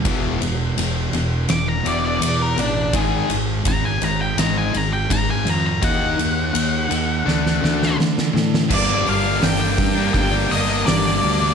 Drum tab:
CC |----------------|----------------|----------------|x---------------|
RD |x-x-x-x-x-x-x-x-|x-x-x-x-x-x-x-x-|x-x-x-x---------|----------------|
HH |----------------|----------------|----------------|--o-o-o-o-o-o-o-|
SD |--------o-------|--------o-------|--------oooooooo|----o-------oo--|
BD |o---------------|o---o-------o---|o---------------|o-----o-o-------|